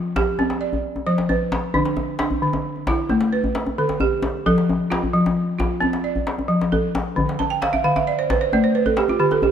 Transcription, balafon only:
Already playing: F3 F4
0.16 G4
0.39 C4
0.61 D5
1.07 F3 C5
1.29 B4
1.74 D3 D4
2.20 D4
2.42 D3
2.88 E4
3.10 A3
3.33 B4
3.78 D3 A4
4.01 G4
4.46 F3 A4
4.90 F4
5.14 F3
5.58 F4
5.81 C4
6.04 D5
6.48 F3
6.72 A4
7.16 D3
7.39 A5
7.50 G5
7.62 F5
7.73 E5
7.84 D3 F5
7.96 E5
8.07 D5
8.19 C5
8.30 B4
8.41 C5
8.53 A3 D5
8.64 C5
8.75 B4
8.86 A4
8.98 G4
9.09 F4
9.20 D3 G4
9.32 A4
9.43 G4

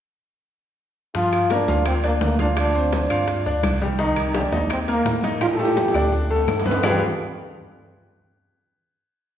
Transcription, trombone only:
1.16 F4
1.52 D4
1.87 C4
2.05 A#3
2.23 A#3
2.41 D4
2.59 D4
2.95 D4
4.01 D#4
4.36 D4
4.72 C4
4.90 A#3
5.42 F4
5.54 A4
5.60 G4
6.85 G4

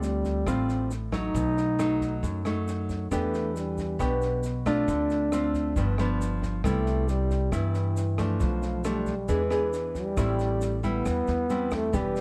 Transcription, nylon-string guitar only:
Already playing: D3 G3 C4 F4
0.46 A2 G3 C4 F4
1.12 F#3 A3 D#4
1.34 B2
1.79 F#3 A3 D#4
2.23 F#2
2.45 F#3 A3 D#4
3.11 E3 B3 D4 G4
3.99 B2 B3 D4 G4
4.66 A3 C4 F4
4.88 D3
5.33 A3 C4 F4
5.77 G2 F3 B3 D4
5.99 F3 B3 D4
6.64 C3 G3 B3 E4
7.52 G2 G3 B3 E4
8.18 F3 A3 D4
8.40 B2
8.84 F3 A3 D4
9.28 E3 B3 D4 G#4
9.50 B3 D4 G#4
10.16 A2 G3 C4 E4
10.83 G3 E4
11.06 E3
11.50 G3 C4 E4
11.93 E3 B3 D4 G4

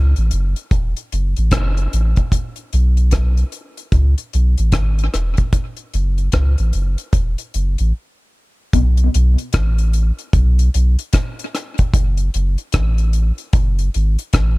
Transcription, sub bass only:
Already playing: C#2
0.18 A1
0.33 F#1
0.72 E1
1.13 F#1
1.38 A1
1.52 F#1
1.93 A1
2.73 B1
3.93 C#2
4.34 B1
4.59 A1
4.73 G#1
5.14 E1
5.94 F#1
6.34 C#2
6.59 A1
6.74 F#1
7.14 E1
7.55 F#1
7.80 A1
8.74 B1
9.15 B1
9.55 A1
10.34 B1
10.75 B1
11.94 F#1
12.35 F#1
12.75 A1
13.54 F#1
13.95 G#1
14.34 A1

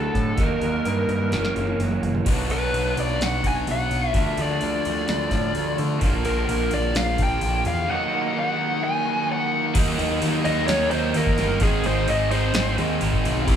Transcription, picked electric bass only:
0.14 A2
0.38 D#2
0.62 D#2
0.86 G2
1.09 G2
1.32 F#1
1.56 F#1
1.79 F#1
2.02 F#1
2.26 B1
2.49 B1
2.73 B1
2.97 B1
3.20 B1
3.44 B1
3.68 B1
3.90 B1
4.14 D2
4.38 D2
4.63 D2
4.86 D2
5.09 D2
5.30 A2
5.55 D2
5.79 D3
6.02 A#1
6.26 A#1
6.49 A#1
6.73 A#1
6.95 A#1
7.19 A#1
7.42 A#1
7.66 E2
9.75 D#2
9.99 D#2
10.22 D#2
10.45 D#2
10.68 D#2
10.92 D#2
11.15 D#2
11.39 G1
11.61 G#1
11.84 G#1
12.09 G#1
12.54 G#1
12.78 D#2
13.02 G#1
13.25 B1
13.47 C2

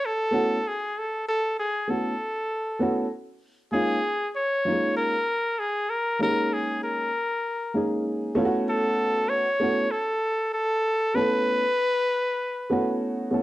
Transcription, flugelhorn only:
0.05 A4
0.68 G#4
0.99 A4
1.28 A4
1.59 G#4
1.90 A4
3.73 G#4
4.36 C#5
4.97 A#4
5.59 G#4
5.90 A#4
6.22 A#4
6.53 G#4
6.83 A#4
8.69 A4
9.29 C#5
9.91 A4
10.54 A4
11.15 B4

